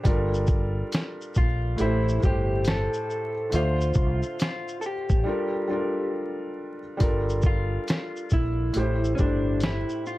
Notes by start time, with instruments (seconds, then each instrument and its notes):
0.03 fretless electric bass G1, felt piano G3 D4 F4 A4, kick, closed hi-hat, shaker
0.08 felt piano A#4
0.34 shaker
0.47 kick, shaker
0.92 snare, closed hi-hat, shaker
1.21 shaker
1.34 fretless electric bass A#1, clean electric guitar F4, kick, shaker
1.76 fretless electric bass A1, felt piano A2 A3 E4 G4, closed hi-hat, shaker
1.81 clean electric guitar E4, felt piano C5
2.09 shaker
2.20 fretless electric bass G1, felt piano A2 A3 E4 G4, kick, shaker
2.25 clean electric guitar G4, felt piano C5
2.65 clean electric guitar A4, snare, closed hi-hat, shaker
2.93 shaker
3.10 shaker
3.50 felt piano D3 A3 F4 E5, closed hi-hat, shaker
3.54 fretless electric bass D2, clean electric guitar F4, felt piano C5
3.81 shaker
3.94 fretless electric bass C2, kick, shaker
4.22 shaker
4.40 clean electric guitar F4, snare, closed hi-hat, shaker
4.68 shaker
4.81 clean electric guitar A4, shaker
4.86 clean electric guitar G4
5.09 fretless electric bass A1, kick, shaker
5.24 felt piano G3 D4 F4 A4
5.29 felt piano A#4
5.68 felt piano G3 D4 F4 A4
5.73 felt piano A#4
6.97 fretless electric bass G1, felt piano G3 D4 F4 A4, kick, closed hi-hat, shaker
7.02 felt piano A#4
7.29 shaker
7.42 kick, shaker
7.46 clean electric guitar F4
7.88 snare, closed hi-hat, shaker
8.16 shaker
8.30 fretless electric bass A#1, clean electric guitar E4, kick, shaker
8.73 fretless electric bass A1, felt piano A2 A3 E4 G4, closed hi-hat, shaker
8.78 felt piano C5
9.04 shaker
9.15 felt piano A2 A3 E4, clean electric guitar C#4, shaker
9.19 fretless electric bass G1, clean electric guitar D4, felt piano G4 C5, kick
9.60 clean electric guitar E4, snare, closed hi-hat, shaker
9.89 shaker
10.06 clean electric guitar F4, shaker